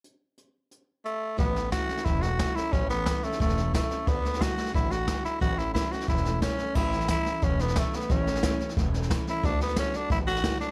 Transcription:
<<
  \new Staff \with { instrumentName = "Tenor saxophone" } { \time 4/4 \key a \major \tempo 4 = 179 r2. a4 | b4 fis'4 e'8 fis'4 e'8 | cis'8 b4 a8 a4 a4 | b4 fis'4 e'8 fis'4 e'8 |
fis'8 e'8 e'8 fis'8 e'4 cis'4 | e'4 e'4 cis'8 b8 a8 b8 | cis'2 r4. e'8 | d'8 b8 cis'8 d'8 e'8 fis'4 d'8 | }
  \new Staff \with { instrumentName = "Steel-string acoustic guitar" } { \time 4/4 \key a \major r1 | <a, e a cis' e'>8 <a cis' e'>8 <e a cis' e'>8 <a cis' e'>8 <a, e a cis' e'>8 <a cis' e'>8 <e a cis' e'>8 <a cis' e'>8 | <a, e a cis' e'>8 <a cis' e'>8 <e a cis' e'>8 <a cis' e'>8 <a, e a cis' e'>8 <a cis' e'>8 <e a cis' e'>8 <a cis' e'>8 | <d a d' fis'>8 <a d' fis'>8 <d a d' fis'>8 <a d' fis'>8 <d a d' fis'>8 <a d' fis'>8 <d a d' fis'>8 <a d' fis'>8 |
<a, e a cis' e'>8 <a cis' e'>8 <e a cis' e'>8 <a cis' e'>8 <a, e a cis' e'>8 <a cis' e'>8 <e a e'>8 <a cis' e'>8 | <a, e a cis' e'>8 <a cis' e'>8 <a, e a cis' e'>8 <a cis' e'>8 <e a cis' e'>8 <a cis' e'>8 <a, e a cis' e'>8 <a cis' e'>8 | <a, e a cis' e'>8 <a cis' e'>8 <a, e a cis' e'>8 <a cis' e'>8 <e a cis' e'>8 <a cis' e'>8 <a, e a cis' e'>8 <a cis' e'>8 | <d a d' fis'>8 <a d' fis'>8 <d a d' fis'>8 <a d' fis'>8 <d a d' fis'>8 <a d' fis'>8 <d a d' fis'>8 <a d' fis'>8 | }
  \new Staff \with { instrumentName = "Upright bass" } { \clef bass \time 4/4 \key a \major r1 | a,,4. r8 e,,4. r8 | a,,4. r8 e,,4. r8 | d,4. r8 a,,4. r8 |
a,,4. r8 e,,4. r8 | a,,4. r8 e,,4. r8 | a,,4. r8 e,,4. r8 | d,4. r8 a,,4. r8 | }
  \new DrumStaff \with { instrumentName = "Drums" } \drummode { \time 4/4 hh4 hh4 hh4 hh4 | <bd sn>8 sn8 <hhp bd sn>8 sn16 sn16 <bd sn>8 sn8 <hhp bd sn>8 sn8 | <bd sn>8 sn8 <hhp bd sn>8 sn16 sn16 <bd sn>16 sn16 sn8 <hhp bd sn>8 sn8 | <bd sn>8 sn16 sn16 <hhp bd sn>8 sn16 sn16 <bd sn>8 sn8 <hhp bd sn>8 sn8 |
<bd sn>8 sn8 <hhp bd sn>8 sn16 sn16 <bd sn>16 sn16 sn8 <hhp bd sn>8 sn8 | <cymc bd sn>8 sn16 sn16 <hhp bd sn>8 sn8 <bd sn>8 sn16 sn16 <hhp bd sn>8 sn16 sn16 | <bd sn>8 sn16 sn16 <hhp bd sn>8 sn16 sn16 <bd sn>8 sn16 sn16 <hhp bd sn>8 sn8 | <bd sn>8 sn16 sn16 <hhp bd sn>8 sn8 <bd sn>8 sn16 sn16 <hhp bd sn>8 sn8 | }
>>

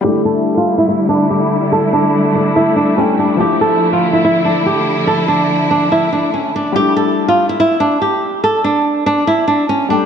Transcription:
<<
  \new Staff \with { instrumentName = "Nylon-string guitar" } { \time 4/4 \key a \phrygian \tempo 4 = 143 g'8 a'8. f'8 e'16 e'8 d'8 g'4 | a'8 d'4 d'8 e'8 d'8 cis'8 d'8 | g'8 a'8. f'8 e'16 e'8 d'8 g'4 | a'8 d'4 d'8 e'8 d'8 cis'8 d'8 |
g'8 a'8. f'8 e'16 e'8 d'8 g'4 | a'8 d'4 d'8 e'8 d'8 cis'8 d'8 | }
  \new Staff \with { instrumentName = "Grand piano" } { \time 4/4 \key a \phrygian <g a d' e'>1~ | <g a d' e'>2. <g a d' g'>4 | <f a d' e'>1~ | <f a d' e'>1 |
<g a d' e'>1~ | <g a d' e'>2.~ <g a d' e'>8 <g a d' g'>8 | }
  \new Staff \with { instrumentName = "String section" } { \clef bass \time 4/4 \key a \phrygian << { <d g e'>1~ | <d g e'>1 | <d f e'>1~ | <d f e'>1 |
r1 | r1 | } \\ { a1~ | a1~ | a1~ | a1 |
r1 | r1 | } >> }
>>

